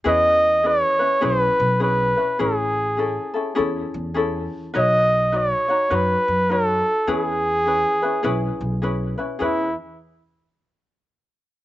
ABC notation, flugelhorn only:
X:1
M:4/4
L:1/8
Q:"Swing" 1/4=103
K:E
V:1 name="Flugelhorn"
d2 c2 B2 B2 | G4 z4 | d2 c2 B2 A2 | G6 z2 |
E z6 z |]